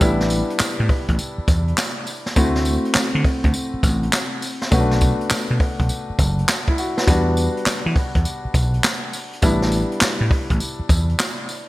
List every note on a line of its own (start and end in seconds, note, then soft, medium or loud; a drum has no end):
0.00 0.40 A1 loud
0.00 2.32 G3 medium
0.00 2.32 B3 medium
0.00 2.32 D4 medium
0.00 2.33 E4 medium
0.00 0.19 G4 medium
0.00 kick loud
0.00 closed hi-hat medium
0.00 tambourine medium
0.20 snare medium
0.30 closed hi-hat medium
0.30 tambourine medium
0.50 closed hi-hat medium
0.59 muted slap bass stroke soft
0.59 snare loud
0.59 clap medium
0.59 closed hi-hat medium
0.59 tambourine loud
0.80 0.88 A2 loud
0.89 kick loud
0.89 open hi-hat medium
1.08 1.17 A1 medium
1.08 kick medium
1.08 closed hi-hat medium
1.19 closed hi-hat medium
1.19 tambourine medium
1.38 muted slap bass stroke soft
1.48 1.72 E2 loud
1.48 kick loud
1.48 closed hi-hat medium
1.48 tambourine medium
1.68 closed hi-hat soft
1.78 snare loud
1.78 clap loud
1.78 tambourine loud
2.07 open hi-hat medium
2.07 tambourine medium
2.26 snare medium
2.26 closed hi-hat medium
2.36 2.76 D2 loud
2.36 4.67 A3 medium
2.36 4.68 C4 medium
2.36 4.68 E4 medium
2.36 4.69 F#4 medium
2.36 kick loud
2.36 closed hi-hat medium
2.36 tambourine medium
2.55 snare medium
2.65 closed hi-hat medium
2.65 tambourine medium
2.85 closed hi-hat medium
2.94 muted slap bass stroke soft
2.94 snare loud
2.94 clap medium
2.94 closed hi-hat medium
2.94 tambourine medium
3.15 3.23 D3 loud
3.24 kick loud
3.24 open hi-hat medium
3.44 3.52 D2 medium
3.44 kick medium
3.44 closed hi-hat medium
3.54 closed hi-hat medium
3.54 tambourine medium
3.74 muted slap bass stroke soft
3.83 4.07 A1 loud
3.83 kick loud
3.83 closed hi-hat medium
3.83 tambourine medium
4.03 closed hi-hat medium
4.13 snare loud
4.13 clap loud
4.13 tambourine loud
4.42 open hi-hat medium
4.42 tambourine medium
4.62 snare medium
4.62 closed hi-hat medium
4.71 5.11 B1 loud
4.71 7.03 A3 medium
4.71 7.03 B3 medium
4.71 4.81 C#4 medium
4.71 6.17 F#4 medium
4.71 kick loud
4.71 closed hi-hat medium
4.71 tambourine medium
4.79 7.07 D4 medium
4.91 snare medium
5.01 kick medium
5.01 closed hi-hat medium
5.01 tambourine medium
5.21 closed hi-hat medium
5.30 muted slap bass stroke soft
5.30 snare loud
5.30 clap medium
5.30 closed hi-hat medium
5.30 tambourine loud
5.50 5.58 B2 medium
5.60 kick loud
5.60 open hi-hat medium
5.79 5.88 B1 medium
5.79 kick medium
5.79 closed hi-hat medium
5.89 closed hi-hat medium
5.89 tambourine medium
6.10 muted slap bass stroke soft
6.18 6.42 F#1 medium
6.18 kick loud
6.18 closed hi-hat medium
6.18 tambourine medium
6.38 closed hi-hat soft
6.48 snare loud
6.48 clap medium
6.48 closed hi-hat medium
6.48 tambourine loud
6.68 6.77 E4 medium
6.68 kick medium
6.78 6.97 F#4 medium
6.78 open hi-hat medium
6.78 tambourine medium
6.97 7.25 B4 medium
6.97 snare medium
6.97 closed hi-hat medium
7.07 7.46 E2 medium
7.07 9.38 G3 medium
7.07 9.39 B3 medium
7.07 9.39 D4 medium
7.07 9.39 F#4 medium
7.07 kick loud
7.07 closed hi-hat medium
7.07 tambourine medium
7.37 closed hi-hat medium
7.37 tambourine medium
7.57 closed hi-hat medium
7.66 muted slap bass stroke soft
7.66 snare loud
7.66 clap medium
7.66 closed hi-hat medium
7.66 tambourine loud
7.86 7.94 E3 loud
7.96 kick loud
7.96 open hi-hat medium
8.15 8.23 E2 medium
8.15 kick medium
8.15 closed hi-hat medium
8.25 closed hi-hat medium
8.25 tambourine medium
8.45 muted slap bass stroke soft
8.54 8.78 B1 loud
8.54 kick loud
8.54 closed hi-hat medium
8.54 tambourine medium
8.74 closed hi-hat medium
8.84 snare loud
8.84 clap medium
8.84 closed hi-hat medium
8.84 tambourine loud
9.13 open hi-hat medium
9.13 tambourine medium
9.33 closed hi-hat medium
9.42 9.82 A1 loud
9.42 11.69 G3 medium
9.42 11.69 B3 medium
9.42 11.69 D4 medium
9.42 11.69 E4 medium
9.42 kick loud
9.42 closed hi-hat medium
9.42 tambourine medium
9.62 snare medium
9.72 closed hi-hat medium
9.72 tambourine medium
9.92 closed hi-hat medium
10.01 muted slap bass stroke soft
10.01 snare loud
10.01 clap medium
10.01 closed hi-hat medium
10.01 tambourine loud
10.21 10.29 A2 loud
10.31 kick loud
10.31 open hi-hat medium
10.50 10.58 A1 medium
10.50 kick medium
10.50 closed hi-hat medium
10.60 closed hi-hat medium
10.60 tambourine medium
10.79 muted slap bass stroke soft
10.89 11.13 E2 loud
10.89 kick loud
10.89 closed hi-hat medium
10.89 tambourine medium
11.09 closed hi-hat soft
11.19 snare loud
11.19 clap loud
11.19 tambourine loud
11.49 open hi-hat medium
11.49 tambourine medium